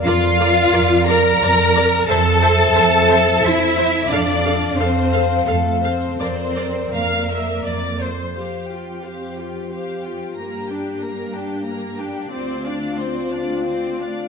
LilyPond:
<<
  \new Staff \with { instrumentName = "Violin section" } { \time 3/4 \key f \major \tempo 4 = 89 f''4. bes''4. | a''2 e''4 | d''4 c''4 a'8 c''8 | c''4 bes'4. r8 |
f''8 g''8 f''8 g''8 f''8 g''8 | bes''8 g''8 bes''8 g''8 bes''8 g''8 | d''8 f''8 d''8 f''8 d''8 f''8 | }
  \new Staff \with { instrumentName = "Violin section" } { \time 3/4 \key f \major f''4. bes''4. | a''2 e''4 | d''4 c''4 a'8 c''8 | c''4 bes'4. r8 |
c''8 g'8 c''8 g'8 c''8 g'8 | bes'8 g'8 bes'8 g'8 bes'8 g'8 | c''8 d''8 c''8 d''8 c''8 d''8 | }
  \new Staff \with { instrumentName = "French horn section" } { \time 3/4 \key f \major << { d''2. | e''2. | f''2. | d''2~ d''8 r8 |
g'2.~ | g'2. | f'2. | } \\ { bes'2. | c''2. | a'2. | bes'2~ bes'8 r8 |
c'2. | bes2. | c'2. | } >> }
  \new Staff \with { instrumentName = "Viola section" } { \time 3/4 \key f \major <bes' d''>8 <bes' d''>8 <bes' d''>8 <bes' d''>8 <bes' d''>8 <bes' d''>8 | <c'' e''>8 <c'' e''>8 <c'' e''>8 <c'' e''>8 <c'' e''>8 <c'' e''>8 | <a' f''>8 <a' f''>8 <a' f''>8 <a' f''>8 <a' f''>8 <a' f''>8 | <bes' d''>8 <bes' d''>8 f''8 e''8 d''8 c''8 |
g'8 f'8 g'8 f'8 g'8 f'8 | bes8 d'8 bes8 d'8 bes8 d'8 | c'8 d'8 c'8 d'8 c'8 d'8 | }
  \new Staff \with { instrumentName = "Cello section" } { \time 3/4 \key f \major f'4. bes'4. | a'2 e'4 | d'4 c'4 a8 c'8 | c'4 bes4. r8 |
f,2. | g,2. | d,2. | }
  \new Staff \with { instrumentName = "Double bass section" } { \clef bass \time 3/4 \key f \major f,4 f,4 f,4 | f,4 f,4 f,4 | f,4 f,4 f,4 | f,4 f,4 f,4 |
r2. | r2. | r2. | }
>>